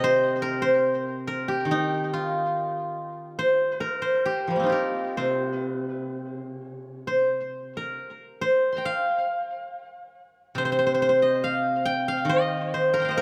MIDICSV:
0, 0, Header, 1, 2, 480
1, 0, Start_track
1, 0, Tempo, 863309
1, 1888, Time_signature, 4, 2, 24, 8
1, 2380, Tempo, 933126
1, 3820, Tempo, 882353
1, 4780, Tempo, 852273
1, 7243, End_track
2, 0, Start_track
2, 0, Title_t, "Guzheng"
2, 0, Program_c, 0, 107
2, 0, Note_on_c, 0, 48, 54
2, 0, Note_on_c, 0, 51, 57
2, 0, Note_on_c, 0, 63, 83
2, 0, Note_on_c, 0, 65, 69
2, 0, Note_on_c, 0, 67, 75
2, 0, Note_on_c, 0, 75, 86
2, 20, Note_on_c, 0, 72, 103
2, 233, Note_on_c, 0, 70, 94
2, 253, Note_off_c, 0, 67, 0
2, 342, Note_off_c, 0, 72, 0
2, 344, Note_on_c, 0, 72, 91
2, 448, Note_off_c, 0, 51, 0
2, 565, Note_off_c, 0, 63, 0
2, 695, Note_off_c, 0, 65, 0
2, 706, Note_off_c, 0, 70, 0
2, 709, Note_on_c, 0, 70, 89
2, 824, Note_on_c, 0, 67, 75
2, 918, Note_on_c, 0, 51, 50
2, 928, Note_off_c, 0, 48, 0
2, 947, Note_off_c, 0, 75, 0
2, 951, Note_on_c, 0, 63, 84
2, 1187, Note_on_c, 0, 65, 64
2, 1444, Note_off_c, 0, 72, 0
2, 1883, Note_on_c, 0, 72, 87
2, 1890, Note_off_c, 0, 70, 0
2, 2115, Note_on_c, 0, 70, 81
2, 2132, Note_off_c, 0, 67, 0
2, 2232, Note_off_c, 0, 72, 0
2, 2234, Note_on_c, 0, 72, 69
2, 2366, Note_on_c, 0, 67, 73
2, 2372, Note_off_c, 0, 51, 0
2, 2452, Note_off_c, 0, 63, 0
2, 2480, Note_on_c, 0, 53, 34
2, 2495, Note_on_c, 0, 55, 38
2, 2523, Note_on_c, 0, 58, 38
2, 2542, Note_on_c, 0, 60, 38
2, 2561, Note_on_c, 0, 63, 42
2, 2575, Note_off_c, 0, 65, 0
2, 2577, Note_on_c, 0, 65, 44
2, 2590, Note_off_c, 0, 67, 0
2, 2592, Note_off_c, 0, 53, 0
2, 2592, Note_on_c, 0, 67, 52
2, 2604, Note_off_c, 0, 70, 0
2, 2606, Note_on_c, 0, 70, 66
2, 2608, Note_off_c, 0, 55, 0
2, 2836, Note_off_c, 0, 72, 0
2, 2838, Note_on_c, 0, 72, 71
2, 2841, Note_on_c, 0, 48, 43
2, 3699, Note_off_c, 0, 70, 0
2, 3802, Note_off_c, 0, 67, 0
2, 3814, Note_off_c, 0, 72, 0
2, 3816, Note_on_c, 0, 72, 70
2, 3879, Note_off_c, 0, 65, 0
2, 3963, Note_off_c, 0, 63, 0
2, 4100, Note_off_c, 0, 60, 0
2, 4195, Note_on_c, 0, 70, 66
2, 4200, Note_off_c, 0, 58, 0
2, 4296, Note_off_c, 0, 48, 0
2, 4544, Note_off_c, 0, 72, 0
2, 4546, Note_on_c, 0, 72, 82
2, 4714, Note_on_c, 0, 84, 42
2, 4737, Note_on_c, 0, 82, 38
2, 4744, Note_on_c, 0, 79, 47
2, 4785, Note_on_c, 0, 77, 98
2, 5370, Note_off_c, 0, 70, 0
2, 5447, Note_off_c, 0, 84, 0
2, 5525, Note_off_c, 0, 82, 0
2, 5617, Note_off_c, 0, 79, 0
2, 5652, Note_off_c, 0, 72, 0
2, 5723, Note_off_c, 0, 77, 0
2, 5740, Note_on_c, 0, 48, 56
2, 5757, Note_on_c, 0, 72, 91
2, 5795, Note_off_c, 0, 72, 0
2, 5797, Note_on_c, 0, 72, 70
2, 5834, Note_off_c, 0, 72, 0
2, 5836, Note_on_c, 0, 72, 69
2, 5872, Note_off_c, 0, 72, 0
2, 5874, Note_on_c, 0, 72, 68
2, 5916, Note_off_c, 0, 72, 0
2, 5918, Note_on_c, 0, 72, 76
2, 5960, Note_off_c, 0, 72, 0
2, 5962, Note_on_c, 0, 72, 66
2, 6003, Note_off_c, 0, 72, 0
2, 6005, Note_on_c, 0, 72, 84
2, 6043, Note_off_c, 0, 72, 0
2, 6045, Note_on_c, 0, 72, 68
2, 6119, Note_on_c, 0, 75, 75
2, 6240, Note_on_c, 0, 77, 93
2, 6475, Note_on_c, 0, 79, 99
2, 6600, Note_off_c, 0, 77, 0
2, 6603, Note_on_c, 0, 77, 92
2, 6697, Note_on_c, 0, 51, 58
2, 6707, Note_off_c, 0, 48, 0
2, 6720, Note_off_c, 0, 75, 0
2, 6722, Note_on_c, 0, 75, 96
2, 6971, Note_off_c, 0, 72, 0
2, 6973, Note_on_c, 0, 72, 81
2, 7084, Note_on_c, 0, 70, 83
2, 7090, Note_on_c, 0, 84, 40
2, 7118, Note_on_c, 0, 82, 43
2, 7128, Note_off_c, 0, 79, 0
2, 7130, Note_on_c, 0, 79, 50
2, 7143, Note_off_c, 0, 77, 0
2, 7146, Note_on_c, 0, 77, 50
2, 7166, Note_off_c, 0, 75, 0
2, 7168, Note_on_c, 0, 75, 58
2, 7178, Note_off_c, 0, 72, 0
2, 7181, Note_on_c, 0, 72, 59
2, 7216, Note_off_c, 0, 70, 0
2, 7218, Note_on_c, 0, 70, 105
2, 7243, Note_off_c, 0, 51, 0
2, 7243, Note_off_c, 0, 70, 0
2, 7243, Note_off_c, 0, 72, 0
2, 7243, Note_off_c, 0, 75, 0
2, 7243, Note_off_c, 0, 77, 0
2, 7243, Note_off_c, 0, 79, 0
2, 7243, Note_off_c, 0, 82, 0
2, 7243, Note_off_c, 0, 84, 0
2, 7243, End_track
0, 0, End_of_file